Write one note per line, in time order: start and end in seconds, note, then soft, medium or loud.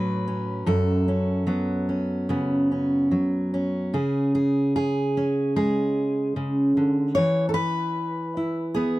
0.00 0.62 A2 medium
0.00 1.45 F#3 medium
0.00 0.27 C#4 soft
0.00 0.67 B4 medium
0.28 1.07 C#4 soft
0.66 3.94 F#2 medium
0.66 3.94 A4 medium
1.08 1.88 C#4 soft
1.47 3.10 F#3 medium
1.47 2.29 B3 soft
1.89 2.70 C#4 soft
2.29 3.12 C#3 medium
2.29 3.95 B3 soft
2.71 3.53 C#4 soft
3.11 3.94 F#3 medium
3.54 5.16 C#4 soft
3.94 6.35 C#3 medium
3.94 4.34 G#4 soft
4.35 4.75 G#4 medium
4.76 5.55 G#4 medium
5.17 7.13 C#4 soft
5.56 7.12 G#3 medium
5.56 7.14 G#4 medium
6.36 6.77 C#3 medium
6.77 7.16 D3 medium
7.15 8.99 E3 medium
7.15 7.48 C#5 loud
7.49 7.54 A4 medium
7.54 8.99 B4 loud
8.37 8.99 E4 soft
8.74 8.99 B3 medium
8.74 8.99 G#4 medium